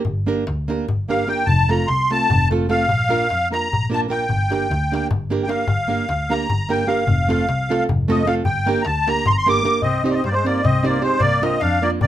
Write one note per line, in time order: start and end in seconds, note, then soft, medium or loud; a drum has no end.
0.05 0.31 G1 medium
0.05 darbuka dum medium
0.26 0.43 A#3 medium
0.26 0.43 D4 medium
0.26 0.44 G4 medium
0.26 0.44 A#4 medium
0.47 0.72 D2 loud
0.47 darbuka tek medium
0.68 0.85 A#3 medium
0.68 0.85 D4 medium
0.68 0.86 G4 medium
0.68 0.86 A#4 medium
0.68 darbuka tek medium
0.80 darbuka tek soft
0.88 1.46 G1 medium
0.88 darbuka dum medium
1.09 1.25 A#3 medium
1.09 1.25 D4 medium
1.09 1.25 G4 medium
1.09 1.25 A#4 medium
1.09 1.29 F5 medium
1.09 darbuka tek medium
1.27 1.43 A#3 medium
1.27 1.43 D4 medium
1.27 1.43 G4 medium
1.27 1.44 A#4 medium
1.27 1.47 G5 loud
1.27 darbuka tek medium
1.38 darbuka tek soft
1.46 1.72 F1 loud
1.46 1.70 A5 loud
1.46 darbuka dum medium
1.69 1.85 A3 medium
1.69 1.85 C4 medium
1.69 1.86 F4 medium
1.69 1.86 A4 medium
1.69 1.89 A#5 medium
1.69 darbuka tek medium
1.87 2.14 C2 medium
1.87 2.11 C6 loud
1.87 darbuka tek medium
2.11 2.27 A3 medium
2.11 2.27 C4 soft
2.11 2.27 F4 soft
2.11 2.28 A4 medium
2.11 2.49 A5 loud
2.11 darbuka tek medium
2.30 2.87 F1 loud
2.30 darbuka dum medium
2.50 2.66 A3 medium
2.50 2.66 C4 medium
2.50 2.67 F4 medium
2.50 2.67 A4 medium
2.50 darbuka tek medium
2.69 2.84 A3 medium
2.69 2.85 C4 medium
2.69 2.85 F4 medium
2.69 2.85 A4 medium
2.69 3.49 F5 loud
2.69 darbuka tek medium
2.88 3.13 A#1 medium
2.88 darbuka dum medium
3.09 3.25 A#3 medium
3.09 3.26 D4 medium
3.09 3.26 F4 medium
3.09 3.26 A#4 medium
3.09 darbuka tek medium
3.21 darbuka tek soft
3.30 3.55 F2 medium
3.30 darbuka tek medium
3.43 darbuka tek soft
3.51 3.67 A#3 soft
3.51 3.67 D4 medium
3.51 3.68 F4 soft
3.51 3.68 A#4 medium
3.51 3.89 A#5 loud
3.51 darbuka tek medium
3.64 darbuka tek soft
3.72 4.29 A#1 medium
3.72 darbuka dum medium
3.84 darbuka tek soft
3.90 4.06 A#3 medium
3.90 4.06 D4 medium
3.90 4.07 F4 medium
3.90 4.07 A#4 medium
3.90 4.01 A5 medium
3.94 darbuka tek medium
4.03 darbuka tek soft
4.08 4.24 A#3 medium
4.08 4.25 D4 medium
4.08 4.25 F4 medium
4.08 4.25 A#4 medium
4.08 5.07 G5 medium
4.08 darbuka tek medium
4.29 4.54 G1 loud
4.29 darbuka dum medium
4.50 4.66 A#3 medium
4.50 4.66 D4 medium
4.50 4.67 G4 medium
4.50 4.67 A#4 medium
4.50 darbuka tek medium
4.70 4.94 D2 loud
4.70 darbuka tek medium
4.92 5.08 A#3 medium
4.92 5.08 D4 medium
4.92 5.08 G4 medium
4.92 5.09 A#4 medium
4.92 darbuka tek medium
5.02 darbuka tek soft
5.11 5.46 G1 medium
5.11 darbuka dum loud
5.30 5.46 A#3 medium
5.30 5.46 D4 medium
5.30 5.47 G4 medium
5.30 5.47 A#4 medium
5.30 darbuka tek medium
5.43 5.49 G5 medium
5.48 5.64 A#3 medium
5.48 5.64 D4 medium
5.48 5.65 G4 medium
5.48 5.65 A#4 medium
5.48 6.34 F5 medium
5.48 darbuka tek medium
5.58 darbuka tek soft
5.68 5.92 G1 medium
5.68 darbuka dum loud
5.88 6.05 A#3 medium
5.88 6.05 D4 medium
5.88 6.05 G4 medium
5.88 6.05 A#4 medium
6.09 6.33 D2 loud
6.09 darbuka tek medium
6.30 6.46 A#3 medium
6.30 6.46 D4 medium
6.30 6.47 G4 soft
6.30 6.47 A#4 medium
6.30 6.72 A#5 loud
6.30 darbuka tek medium
6.42 darbuka tek soft
6.50 7.06 G1 medium
6.50 darbuka dum loud
6.69 6.85 A#3 medium
6.69 6.85 D4 medium
6.69 6.86 G4 medium
6.69 6.86 A#4 medium
6.69 6.87 G5 medium
6.69 darbuka tek medium
6.87 7.03 A#3 medium
6.87 7.03 D4 medium
6.87 7.04 G4 medium
6.87 7.04 A#4 medium
6.87 7.84 F5 medium
6.87 darbuka tek medium
6.98 darbuka tek soft
7.07 7.31 F1 loud
7.07 darbuka dum medium
7.28 7.44 A3 medium
7.28 7.45 C4 medium
7.28 7.45 F4 medium
7.28 7.45 A4 medium
7.28 darbuka tek medium
7.47 7.72 C2 medium
7.47 darbuka tek medium
7.69 7.85 A3 medium
7.69 7.86 C4 medium
7.69 7.86 F4 medium
7.69 7.86 A4 medium
7.69 darbuka tek medium
7.80 darbuka tek soft
7.89 8.44 F1 medium
7.89 darbuka dum medium
8.08 8.24 A3 medium
8.08 8.24 C4 medium
8.08 8.24 F4 medium
8.08 8.25 A4 medium
8.08 8.28 D#5 medium
8.08 darbuka tek medium
8.26 8.42 A3 medium
8.26 8.42 C4 medium
8.26 8.42 F4 medium
8.26 8.42 A4 medium
8.26 8.35 F5 medium
8.26 darbuka tek medium
8.36 darbuka tek soft
8.45 8.69 G1 loud
8.45 8.82 G5 medium
8.45 darbuka dum medium
8.66 8.82 A#3 medium
8.66 8.83 D4 medium
8.66 8.83 G4 medium
8.66 8.83 A#4 medium
8.66 darbuka tek medium
8.76 darbuka tek soft
8.82 9.10 D2 loud
8.82 9.09 A5 medium
8.82 8.86 A#5 medium
8.82 darbuka tek medium
8.97 darbuka tek soft
9.07 9.23 A#3 medium
9.07 9.24 D4 medium
9.07 9.24 G4 soft
9.07 9.24 A#4 medium
9.07 9.27 A#5 loud
9.07 darbuka tek medium
9.17 darbuka tek soft
9.26 9.60 G1 medium
9.26 9.32 C6 loud
9.26 darbuka dum loud
9.31 9.37 A#5 loud
9.37 9.48 C6 loud
9.37 darbuka tek soft
9.46 9.62 A#3 medium
9.46 9.62 D4 medium
9.46 9.62 G4 medium
9.46 9.63 A#4 medium
9.46 9.81 D6 loud
9.46 darbuka tek medium
9.57 darbuka tek soft
9.63 9.79 A#3 medium
9.63 9.80 D4 medium
9.63 9.80 G4 medium
9.63 9.80 A#4 medium
9.63 darbuka tek medium
9.74 darbuka tek soft
9.82 10.08 C2 medium
9.82 10.03 C4 medium
9.82 10.03 D#5 medium
9.82 darbuka dum medium
10.04 10.20 C4 medium
10.04 10.09 C4 medium
10.04 10.20 D#4 medium
10.04 10.21 G4 medium
10.04 10.21 C5 medium
10.04 10.10 D#5 medium
10.04 darbuka tek medium
10.10 10.15 A#3 soft
10.10 10.15 D5 medium
10.14 10.24 C4 medium
10.14 10.24 D#5 medium
10.14 darbuka tek soft
10.24 10.48 G2 loud
10.24 10.29 G3 medium
10.24 10.30 C5 medium
10.24 darbuka tek medium
10.28 10.34 A#3 medium
10.28 10.34 D5 medium
10.33 10.45 G#3 medium
10.33 10.46 C5 medium
10.44 10.63 A#3 medium
10.44 10.61 C4 medium
10.44 10.61 D#4 soft
10.44 10.61 G4 soft
10.44 10.62 C5 medium
10.44 10.65 D5 medium
10.44 darbuka tek medium
10.63 10.98 C2 loud
10.63 10.83 C4 medium
10.63 10.85 D#5 medium
10.63 darbuka dum medium
10.74 darbuka tek soft
10.83 10.99 C4 medium
10.83 10.99 D#4 medium
10.83 10.99 G4 medium
10.83 11.00 C5 medium
10.83 11.03 D5 medium
10.83 darbuka tek medium
10.87 11.03 A#3 medium
10.95 darbuka tek soft
11.01 11.19 G#3 medium
11.01 11.17 C4 medium
11.01 11.17 D#4 medium
11.01 11.17 G4 medium
11.01 11.17 C5 medium
11.01 11.21 C5 medium
11.12 darbuka tek soft
11.19 11.45 C2 medium
11.19 11.41 A#3 medium
11.19 11.43 D5 loud
11.19 darbuka dum loud
11.42 11.58 A#3 medium
11.42 11.60 C4 medium
11.42 11.58 D4 medium
11.42 11.58 F4 medium
11.42 11.58 A#4 medium
11.42 11.61 D#5 medium
11.42 darbuka tek medium
11.59 11.86 F2 loud
11.59 11.81 D4 medium
11.59 11.83 F5 medium
11.59 darbuka tek medium
11.72 darbuka tek soft
11.82 11.90 A#3 medium
11.82 11.98 A#3 medium
11.82 11.99 D4 soft
11.82 11.99 F4 soft
11.82 11.99 A#4 medium
11.82 11.91 D5 medium
11.82 darbuka tek medium
12.01 12.07 C2 loud
12.01 12.07 A#3 medium
12.01 12.07 D5 medium
12.01 darbuka dum medium